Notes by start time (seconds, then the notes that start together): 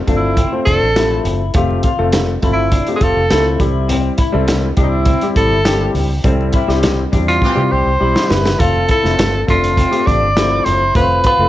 0.07 G1 A3 C4 D4 F4 A4, kick, closed hi-hat, high conga, low conga
0.17 E4
0.37 C4, kick, closed hi-hat, high conga
0.52 A3 C4 F4 C5
0.65 F1 D4 A4, kick, closed hi-hat, high conga
0.82 A1
0.96 F3 A3 C4 E4 A4, snare, closed hi-hat, muted conga
1.11 muted conga
1.25 F#1, closed hi-hat, low conga
1.54 F1 A3 C4 F4 G4, kick, closed hi-hat, low conga
1.71 muted conga
1.83 F4, kick, closed hi-hat
1.99 F1 A3 C4 F4 A4
2.12 snare, closed hi-hat, high conga
2.42 G1 A3 C4 E4 F4 A4, kick, closed hi-hat, high conga, low conga
2.53 E4
2.72 D4, kick, closed hi-hat, high conga
2.87 A3 C4 F4 G4, closed hi-hat
2.96 G#4
3.01 F1 F4 A4, kick, closed hi-hat, high conga
3.17 F1
3.31 C#2 A3 C4 E4 F4 A4, snare, closed hi-hat, muted conga
3.60 C2 G3 C4 E4 G4, kick, closed hi-hat, low conga
3.88 C4, closed hi-hat, muted conga, low conga
4.18 E4, kick, closed hi-hat
4.32 C2 G3 C4 E4 A4
4.48 snare, closed hi-hat, high conga
4.77 C2 G3 C4 D4 E4 G4, kick, closed hi-hat, high conga, low conga
4.83 D#4
4.89 E4
5.05 C4, kick, closed hi-hat, muted conga, high conga
5.21 G3 C4 E4 G4, closed hi-hat, muted conga
5.36 A1 E4 A4, kick, closed hi-hat, high conga
5.51 G1
5.65 G3 C4 E4 G4, snare, closed hi-hat, muted conga
5.81 muted conga
5.95 C#2, open hi-hat, low conga
6.24 C2 G3 C4 E4 A4, kick, closed hi-hat, muted conga, low conga
6.41 muted conga
6.53 C3 G3 E4, kick, closed hi-hat
6.68 C2 G3 C4 E4 G4, snare
6.83 snare, closed hi-hat, muted conga, high conga
6.99 muted conga
7.12 E2 G3 C4 D4 E4 G4, kick, closed hi-hat, high conga, low conga
7.28 F4, closed hi-hat
7.42 E3 C4 G4, kick, high conga
7.55 C3 G3 C4 E4 G4
7.72 C2 G4 C5, high conga
7.86 C2
8.00 B1 G3 C4 E4 G4
8.16 snare, muted conga
8.30 F#1 B4, snare, low conga
8.46 snare
8.59 F1 A3 C4 F4 A4, kick, closed hi-hat, low conga
8.76 muted conga
8.88 E4 A4, kick, closed hi-hat
9.03 F1 A3 C4 F4 A4, snare
9.19 G1, snare, closed hi-hat, muted conga, high conga
9.35 muted conga
9.47 F1 A3 C4 D4 F4 A4, kick, closed hi-hat, high conga, low conga
9.64 closed hi-hat
9.77 C4, kick, closed hi-hat, muted conga, high conga
9.91 A3 C4 F4 G4, closed hi-hat
10.07 A1 D4 D5, kick, closed hi-hat, high conga
10.22 G1
10.36 F3 A3 C4 E4 C5, snare, closed hi-hat, muted conga
10.51 muted conga
10.65 F#1 C5, closed hi-hat, low conga
10.95 F1 A3 C4 F4 B4 C5, kick, closed hi-hat, muted conga, low conga
11.12 muted conga
11.24 F4 B4, kick, closed hi-hat
11.39 F1 A3 C4 F4 A4